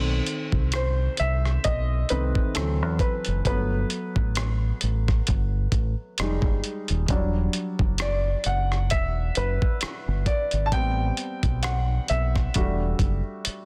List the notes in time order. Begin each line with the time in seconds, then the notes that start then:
Already playing: B1 D#3 A3 C4
0.27 closed hi-hat
0.52 C2, kick
0.72 C5, cross-stick, closed hi-hat
1.17 C2 E5, closed hi-hat
1.45 cross-stick
1.64 B1 D#5, kick, closed hi-hat
2.09 C2 D#3 A3 C4 B4, closed hi-hat
2.35 kick
2.55 D2 E3 F#3 C4 A4, cross-stick, closed hi-hat
2.82 E2
2.99 B4, kick, closed hi-hat
3.25 F#1, closed hi-hat
3.45 G1 F#3 A3 B3 B4, kick, closed hi-hat
3.90 closed hi-hat
4.16 A1, kick
4.35 cross-stick, closed hi-hat
4.81 A1, closed hi-hat
5.08 kick, cross-stick
5.27 G1, kick, closed hi-hat
5.72 A1, kick, closed hi-hat
6.18 F1 G3 G#3 D#4, cross-stick, closed hi-hat
6.42 G1, kick
6.64 closed hi-hat
6.88 D#1, closed hi-hat
7.08 E1 F#3 G3 D4, kick, closed hi-hat
7.53 closed hi-hat
7.79 F#1, kick
7.98 D5, cross-stick, closed hi-hat
8.44 F#1 F#5, closed hi-hat
8.72 cross-stick
8.90 E1 E5, kick, closed hi-hat
9.35 F#1 B4, closed hi-hat
9.62 kick
9.81 muted fingered electric bass stroke, cross-stick, closed hi-hat
10.08 G1
10.26 D5, kick, closed hi-hat
10.51 G#1, closed hi-hat
10.66 A5
10.72 A1 G3 B3 C4 G5, kick, closed hi-hat
11.17 closed hi-hat
11.43 B1, kick, closed hi-hat
11.63 F#5, cross-stick, closed hi-hat
12.08 B1 E5, closed hi-hat
12.36 kick, cross-stick
12.54 E1 G3 A3 D4 F#4, kick, closed hi-hat
12.99 F#1, kick, closed hi-hat
13.45 muted fingered electric bass stroke, closed hi-hat